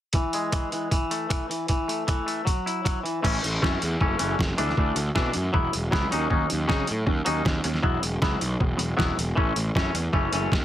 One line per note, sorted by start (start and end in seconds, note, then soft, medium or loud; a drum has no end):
0.13 0.52 E3 medium
0.13 kick medium
0.13 closed hi-hat medium
0.33 0.92 G#3 medium
0.33 closed hi-hat soft
0.52 0.72 E3 medium
0.52 finger snap medium
0.52 kick medium
0.52 closed hi-hat medium
0.72 0.91 E3 medium
0.72 closed hi-hat soft
0.91 1.29 E3 medium
0.91 kick medium
0.91 closed hi-hat medium
1.11 1.50 A3 medium
1.11 closed hi-hat medium
1.29 1.49 E3 medium
1.29 finger snap medium
1.29 kick medium
1.29 closed hi-hat medium
1.49 1.68 E3 medium
1.49 closed hi-hat soft
1.68 2.06 E3 medium
1.68 kick medium
1.68 closed hi-hat medium
1.88 2.25 A3 medium
1.88 closed hi-hat soft
2.07 2.44 E3 medium
2.07 finger snap medium
2.07 kick medium
2.07 closed hi-hat medium
2.26 2.46 A3 medium
2.26 closed hi-hat soft
2.45 2.83 F#3 medium
2.45 kick medium
2.45 closed hi-hat medium
2.66 3.04 E4 medium
2.66 closed hi-hat soft
2.85 3.03 F#3 medium
2.85 finger snap medium
2.85 kick medium
2.85 closed hi-hat medium
3.03 3.21 E3 medium
3.03 closed hi-hat soft
3.23 3.38 A1 medium
3.23 3.41 E3 medium
3.23 3.41 A3 medium
3.23 3.42 C#4 medium
3.23 kick medium
3.23 crash medium
3.43 3.57 A1 medium
3.43 3.60 E3 medium
3.43 3.60 A3 medium
3.43 closed hi-hat medium
3.62 3.76 F#2 medium
3.62 3.80 E3 medium
3.62 3.80 A3 medium
3.62 3.80 C#4 medium
3.62 kick loud
3.62 snare loud
3.81 3.96 E2 medium
3.81 3.98 E3 medium
3.81 3.99 A3 medium
3.81 closed hi-hat medium
4.01 4.14 F#1 medium
4.01 4.17 E3 medium
4.01 4.18 A3 medium
4.01 4.18 C#4 medium
4.01 kick medium
4.19 4.34 F#1 medium
4.19 4.37 E3 medium
4.19 4.37 A3 medium
4.19 4.38 C#4 medium
4.19 closed hi-hat medium
4.38 4.53 F#1 medium
4.38 4.56 E3 medium
4.38 4.56 A3 medium
4.38 kick medium
4.38 snare loud
4.58 4.72 D2 medium
4.58 4.76 E3 medium
4.58 4.76 A3 medium
4.58 4.76 D4 medium
4.58 closed hi-hat medium
4.69 snare soft
4.77 4.91 D2 medium
4.77 4.95 E3 medium
4.77 4.96 A3 medium
4.77 4.96 D4 medium
4.77 kick medium
4.96 5.09 D2 medium
4.96 5.14 E3 medium
4.96 5.14 A3 medium
4.96 closed hi-hat medium
5.15 5.29 B2 medium
5.15 5.32 E3 medium
5.15 5.33 A3 medium
5.15 5.34 D4 medium
5.15 kick loud
5.15 snare loud
5.33 5.49 F#2 medium
5.33 5.51 E3 medium
5.33 5.52 A3 medium
5.33 closed hi-hat medium
5.53 5.67 E1 medium
5.53 5.71 F#3 medium
5.53 5.72 B3 medium
5.53 5.72 E4 medium
5.53 kick loud
5.73 5.88 E1 medium
5.73 5.90 F#3 medium
5.73 5.91 B3 medium
5.73 closed hi-hat medium
5.91 6.06 C#2 medium
5.91 6.10 F#3 medium
5.91 6.10 B3 medium
5.91 6.10 E4 medium
5.91 kick loud
5.91 snare loud
6.11 6.26 D#2 medium
6.11 6.28 F#3 medium
6.11 6.29 C#4 medium
6.11 6.29 D#4 medium
6.11 closed hi-hat medium
6.29 6.44 D#2 medium
6.29 6.48 F#3 medium
6.29 6.48 C#4 medium
6.29 6.48 D#4 medium
6.29 kick loud
6.49 6.65 D#2 medium
6.49 6.66 F#3 medium
6.49 6.67 C#4 medium
6.49 closed hi-hat medium
6.68 6.82 C#3 medium
6.68 6.86 F#3 medium
6.68 6.86 C#4 medium
6.68 6.87 D#4 medium
6.68 kick loud
6.68 snare loud
6.87 7.03 A2 medium
6.87 7.05 F#3 medium
6.87 7.05 C#4 medium
6.87 closed hi-hat medium
7.06 7.20 D#2 medium
7.06 7.24 F#3 medium
7.06 7.24 C#4 medium
7.06 kick medium
7.25 7.40 D#2 medium
7.25 7.44 F#3 medium
7.25 7.44 C#4 medium
7.25 7.45 D#4 medium
7.25 closed hi-hat medium
7.45 7.59 D#2 medium
7.45 7.63 F#3 medium
7.45 7.63 C#4 medium
7.45 kick medium
7.45 snare medium
7.64 7.78 D#2 medium
7.64 7.81 F#3 medium
7.64 7.82 C#4 medium
7.64 closed hi-hat medium
7.74 snare soft
7.83 7.97 E1 medium
7.83 8.01 F#3 medium
7.83 8.01 B3 medium
7.83 8.02 E4 medium
7.83 kick medium
8.02 8.16 E1 medium
8.02 8.20 F#3 medium
8.02 8.20 B3 medium
8.02 closed hi-hat medium
8.22 8.35 C#2 medium
8.22 8.40 F#3 medium
8.22 8.40 B3 medium
8.22 8.40 E4 medium
8.22 kick loud
8.22 snare loud
8.41 8.55 B1 medium
8.41 8.59 F#3 medium
8.41 8.59 B3 medium
8.41 closed hi-hat medium
8.60 8.74 E1 medium
8.60 8.76 F#3 medium
8.60 8.77 B3 medium
8.60 kick loud
8.77 8.92 E1 medium
8.77 8.95 F#3 medium
8.77 8.96 B3 medium
8.77 closed hi-hat medium
8.97 9.12 E1 medium
8.97 9.16 F#3 medium
8.97 9.16 B3 medium
8.97 9.16 E4 medium
8.97 kick loud
8.97 snare loud
9.17 9.32 E1 medium
9.17 9.35 F#3 medium
9.17 9.35 B3 medium
9.17 closed hi-hat medium
9.36 9.51 A1 medium
9.36 9.54 E3 medium
9.36 9.55 A3 medium
9.36 9.55 C#4 medium
9.36 kick loud
9.56 9.69 A1 medium
9.56 9.73 E3 medium
9.56 9.73 A3 medium
9.56 closed hi-hat medium
9.75 9.89 F#2 medium
9.75 9.93 E3 medium
9.75 9.94 A3 medium
9.75 9.94 C#4 medium
9.75 kick loud
9.75 snare loud
9.94 10.08 E2 medium
9.94 10.12 E3 medium
9.94 10.12 A3 medium
9.94 closed hi-hat medium
10.13 10.27 F#1 medium
10.13 10.31 E3 medium
10.13 10.32 A3 medium
10.13 10.32 C#4 medium
10.13 kick medium
10.32 10.46 F#1 medium
10.32 10.51 E3 medium
10.32 10.51 A3 medium
10.32 10.51 C#4 medium
10.32 closed hi-hat medium
10.52 10.65 D#2 medium
10.52 10.65 E3 medium
10.52 10.65 A3 medium
10.52 kick loud
10.52 snare loud